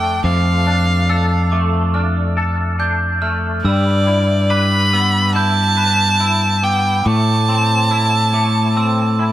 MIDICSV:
0, 0, Header, 1, 5, 480
1, 0, Start_track
1, 0, Tempo, 852273
1, 135, Time_signature, 4, 2, 24, 8
1, 5251, End_track
2, 0, Start_track
2, 0, Title_t, "Glockenspiel"
2, 0, Program_c, 0, 9
2, 0, Note_on_c, 0, 86, 57
2, 128, Note_off_c, 0, 86, 0
2, 135, Note_on_c, 0, 86, 62
2, 615, Note_off_c, 0, 86, 0
2, 617, Note_on_c, 0, 88, 64
2, 855, Note_off_c, 0, 88, 0
2, 855, Note_on_c, 0, 86, 58
2, 1093, Note_on_c, 0, 89, 61
2, 1095, Note_off_c, 0, 86, 0
2, 1573, Note_off_c, 0, 89, 0
2, 1575, Note_on_c, 0, 91, 66
2, 1812, Note_on_c, 0, 89, 69
2, 1814, Note_off_c, 0, 91, 0
2, 2053, Note_off_c, 0, 89, 0
2, 2056, Note_on_c, 0, 88, 75
2, 2534, Note_on_c, 0, 86, 65
2, 2535, Note_off_c, 0, 88, 0
2, 2774, Note_off_c, 0, 86, 0
2, 2778, Note_on_c, 0, 88, 62
2, 3016, Note_off_c, 0, 88, 0
2, 3019, Note_on_c, 0, 91, 72
2, 3496, Note_off_c, 0, 91, 0
2, 3497, Note_on_c, 0, 88, 62
2, 3735, Note_off_c, 0, 88, 0
2, 3736, Note_on_c, 0, 86, 60
2, 3966, Note_off_c, 0, 86, 0
2, 3973, Note_on_c, 0, 86, 78
2, 4453, Note_off_c, 0, 86, 0
2, 4456, Note_on_c, 0, 88, 61
2, 4695, Note_off_c, 0, 88, 0
2, 4697, Note_on_c, 0, 86, 70
2, 4935, Note_off_c, 0, 86, 0
2, 4939, Note_on_c, 0, 88, 71
2, 5251, Note_off_c, 0, 88, 0
2, 5251, End_track
3, 0, Start_track
3, 0, Title_t, "Violin"
3, 0, Program_c, 1, 40
3, 0, Note_on_c, 1, 79, 70
3, 145, Note_off_c, 1, 79, 0
3, 152, Note_on_c, 1, 77, 67
3, 840, Note_off_c, 1, 77, 0
3, 2050, Note_on_c, 1, 74, 76
3, 2534, Note_on_c, 1, 83, 86
3, 2543, Note_off_c, 1, 74, 0
3, 3011, Note_off_c, 1, 83, 0
3, 3014, Note_on_c, 1, 81, 106
3, 3736, Note_on_c, 1, 79, 82
3, 3744, Note_off_c, 1, 81, 0
3, 3976, Note_on_c, 1, 81, 91
3, 3984, Note_off_c, 1, 79, 0
3, 5251, Note_off_c, 1, 81, 0
3, 5251, End_track
4, 0, Start_track
4, 0, Title_t, "Clean electric guitar"
4, 0, Program_c, 2, 27
4, 0, Note_on_c, 2, 57, 48
4, 0, Note_on_c, 2, 62, 56
4, 0, Note_on_c, 2, 69, 47
4, 138, Note_on_c, 2, 53, 55
4, 372, Note_off_c, 2, 62, 0
4, 375, Note_on_c, 2, 62, 50
4, 610, Note_off_c, 2, 69, 0
4, 617, Note_on_c, 2, 69, 53
4, 850, Note_off_c, 2, 57, 0
4, 857, Note_on_c, 2, 57, 59
4, 1089, Note_off_c, 2, 62, 0
4, 1096, Note_on_c, 2, 62, 55
4, 1327, Note_off_c, 2, 69, 0
4, 1334, Note_on_c, 2, 69, 52
4, 1336, Note_off_c, 2, 53, 0
4, 1565, Note_off_c, 2, 62, 0
4, 1571, Note_on_c, 2, 62, 54
4, 1806, Note_off_c, 2, 57, 0
4, 1813, Note_on_c, 2, 57, 45
4, 2053, Note_off_c, 2, 57, 0
4, 2053, Note_off_c, 2, 62, 0
4, 2054, Note_off_c, 2, 69, 0
4, 2054, Note_on_c, 2, 55, 61
4, 2292, Note_on_c, 2, 64, 53
4, 2536, Note_on_c, 2, 71, 58
4, 2779, Note_on_c, 2, 59, 60
4, 3007, Note_off_c, 2, 64, 0
4, 3013, Note_on_c, 2, 64, 55
4, 3242, Note_off_c, 2, 71, 0
4, 3249, Note_on_c, 2, 71, 51
4, 3254, Note_off_c, 2, 55, 0
4, 3485, Note_off_c, 2, 64, 0
4, 3492, Note_on_c, 2, 64, 58
4, 3724, Note_off_c, 2, 59, 0
4, 3731, Note_on_c, 2, 59, 51
4, 3971, Note_off_c, 2, 71, 0
4, 3972, Note_off_c, 2, 59, 0
4, 3973, Note_off_c, 2, 64, 0
4, 3974, Note_on_c, 2, 57, 55
4, 4215, Note_on_c, 2, 60, 63
4, 4455, Note_on_c, 2, 64, 50
4, 4687, Note_off_c, 2, 57, 0
4, 4694, Note_on_c, 2, 57, 60
4, 4928, Note_off_c, 2, 60, 0
4, 4935, Note_on_c, 2, 60, 55
4, 5170, Note_off_c, 2, 64, 0
4, 5177, Note_on_c, 2, 64, 54
4, 5251, Note_off_c, 2, 57, 0
4, 5251, Note_off_c, 2, 60, 0
4, 5251, Note_off_c, 2, 64, 0
4, 5251, End_track
5, 0, Start_track
5, 0, Title_t, "Fingered electric bass"
5, 0, Program_c, 3, 33
5, 0, Note_on_c, 3, 41, 56
5, 112, Note_off_c, 3, 41, 0
5, 134, Note_on_c, 3, 41, 58
5, 2031, Note_off_c, 3, 41, 0
5, 2053, Note_on_c, 3, 43, 58
5, 3950, Note_off_c, 3, 43, 0
5, 3976, Note_on_c, 3, 45, 67
5, 5251, Note_off_c, 3, 45, 0
5, 5251, End_track
0, 0, End_of_file